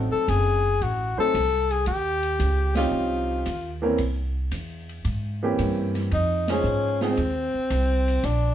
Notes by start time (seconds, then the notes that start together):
Already playing: F#3 A3 C4 D#4 A4
0.12 A4, muted upright bass stroke
0.28 F#1 G#4, kick, hi-hat pedal, ride
0.81 A1 F#4, kick, ride
1.17 F#3 A3 C4 D#4 A4 C5, muted upright bass stroke
1.34 C2, kick, hi-hat pedal, ride
1.71 G#4, ride
1.86 D#2 G4, kick, ride
2.23 ride
2.39 C#2, kick, hi-hat pedal, ride
2.75 F3 C4 C#4 D#4 F4 G4, snare, ride
2.91 C2
3.46 D#2, kick, hi-hat pedal, ride
3.82 E3 A#3 C4 C#4 A#4
3.98 C2, kick, ride
4.52 E2, kick, hi-hat pedal, ride
4.89 ride
5.05 G#2, kick, ride
5.43 E3 A#3 C4 C#4 G4
5.58 G2, kick, hi-hat pedal, ride
5.95 snare, ride
6.11 F2 D#4, kick, ride
6.48 F3 G#3 C#4 D#4 G#4 C5, snare, ride
6.64 G#2, hi-hat pedal
7.01 F3 G#3 C4 D#4 G#4, snare, ride
7.17 D#2, kick, ride
7.54 muted upright bass stroke
7.70 C2, kick, hi-hat pedal, ride
8.08 ride
8.23 A#1 D4, kick, snare, ride